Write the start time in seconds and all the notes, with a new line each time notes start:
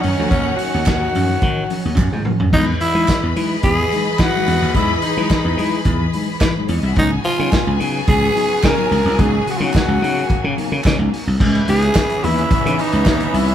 Already playing: D#3 F#3 C#4 D#4 C#5 F#5
0.02 F#2 D#3 C#4, open hi-hat
0.17 D2 F3 F#3 C#4
0.30 D#2 C#4, kick, closed hi-hat
0.57 F#3 C#4 F#4, open hi-hat
0.74 D#2
0.86 D#2 D#3, kick, snare, clap, closed hi-hat
1.14 F#2 F3 F#3 C#4, open hi-hat
1.30 F#3 C#4
1.42 D#3, kick, closed hi-hat
1.70 F3 F#3 C#4, open hi-hat
1.85 D#2 F#3 C#4
1.97 F#2, kick, clap, high tom
2.13 G#2, mid tom
2.25 F3 F#3 C#4, mid tom
2.40 F#2, floor tom
2.52 E2 E3 F#3 G#3 D#4 G#4 B4 D#5 B5, kick, crash
2.81 E3 E4, open hi-hat
2.95 E3 F#3 G#3 D#4
3.08 E3, kick, snare, clap, closed hi-hat
3.23 E2
3.36 E3 F#3 G#3 D#4, open hi-hat
3.51 G#3 D#4
3.63 E2 G#3 D#4 G#4, kick, closed hi-hat
3.80 E3
3.92 F#3 G#3 D#4, open hi-hat
4.13 G#4
4.19 E3 F#4, kick, snare, clap, closed hi-hat
4.37 F#3 G#3 D#4
4.47 E2 G#3 D#4, open hi-hat
4.62 D#2
4.75 E2 F#3 G#3 D#4 E4, kick, closed hi-hat
5.02 E3 D#4, open hi-hat
5.17 E3 F#3 G#3 D#4
5.30 E3, kick, snare, clap, closed hi-hat
5.45 E2
5.57 E3 F#3 G#3 D#4, open hi-hat
5.74 G#3 D#4
5.85 E2 G#3 D#4, kick, closed hi-hat
6.01 E3
6.13 F#3 G#3 D#4, open hi-hat
6.41 E3, kick, snare, clap, closed hi-hat
6.57 F#3 G#3 D#4
6.68 E2 G#3 C#4 D#4 C#5, open hi-hat
6.77 D#4 D#5
6.83 C2 E4 E5
6.89 F#4 F#5
6.95 C#2 C#3 F#3 B3 D#4 G#4 G#5, kick, closed hi-hat
7.24 C#3 F4, open hi-hat
7.39 C#3 F#3 B3 D#4
7.52 C#3, kick, snare, clap, closed hi-hat
7.67 C#2
7.80 C#3 F#3 B3 D#4, open hi-hat
7.95 B3 D#4
8.07 C#2 B3 D#4 G#4, kick, closed hi-hat
8.23 C#3
8.36 F#3 B3 D#4, open hi-hat
8.63 C#3 A#4, kick, snare, clap, closed hi-hat
8.78 F#3 B3 D#4
8.91 C#2 B3 D#4, open hi-hat
9.05 C2
9.19 C#2 F#3 A#3 B3 D#4 G#4, kick, closed hi-hat
9.46 C#3, open hi-hat
9.51 F#4
9.56 F4
9.60 C#3 F#3 B3 D#4
9.65 F#4
9.73 C#3, kick, snare, clap, closed hi-hat
9.88 C#2
10.02 C#3 F#3 B3 D#4, open hi-hat
10.17 B3 D#4
10.29 B3 D#4, kick, closed hi-hat
10.44 C#3
10.57 F#3 B3 D#4, open hi-hat
10.72 C#3
10.84 C#3, kick, snare, clap, closed hi-hat
10.99 C#2 F#3 B3 D#4
11.14 B3 D#4, open hi-hat
11.27 C2
11.39 C#2 C#3 E3 B3 C#4 E5, kick, crash
11.55 closed hi-hat
11.68 C#2 B3 D#4 G#4, open hi-hat
11.82 closed hi-hat
11.95 kick, snare, clap, closed hi-hat
12.10 closed hi-hat
12.24 D#2 E3 B3 D#4 E4, open hi-hat
12.38 closed hi-hat
12.51 C#3, muted slap bass stroke, kick, closed hi-hat
12.66 C#3 E3 B3 D#4, closed hi-hat
12.79 B3 D#4, open hi-hat
12.93 C#2, closed hi-hat
13.05 D#2 B3 D#4, kick, snare, clap, closed hi-hat
13.20 C#3, closed hi-hat
13.34 C2 B3 D#4 E4, open hi-hat
13.48 closed hi-hat